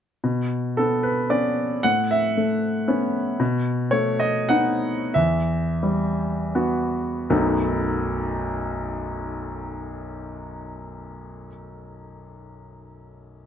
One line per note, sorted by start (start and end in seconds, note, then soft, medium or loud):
0.24 1.81 B2 soft
0.77 1.29 B3 soft
0.77 1.04 A4 medium
1.03 1.31 B4 soft
1.30 1.81 B3 soft
1.30 1.81 C#4 soft
1.30 1.85 D5 medium
1.83 3.36 A2 soft
1.83 2.10 F#5 medium
2.11 3.14 E5 medium
2.37 3.20 A3 soft
2.88 3.36 B3 soft
2.88 3.36 C#4 soft
3.40 5.11 B2 medium
3.91 4.88 A3 soft
3.91 4.20 C#5 medium
4.19 4.50 D#5 medium
4.49 5.11 B3 soft
4.49 5.11 D#4 soft
4.49 5.15 F#5 medium
5.14 7.26 E2 soft
5.14 6.93 E5 medium
5.83 7.00 G3 soft
6.55 7.26 B3 soft
6.55 7.26 F#4 soft
7.30 11.46 B1 medium
7.30 11.46 F#2 soft
7.30 11.47 F#3 soft
7.30 11.47 A3 soft
7.30 11.47 B3 soft
7.30 11.48 D#4 soft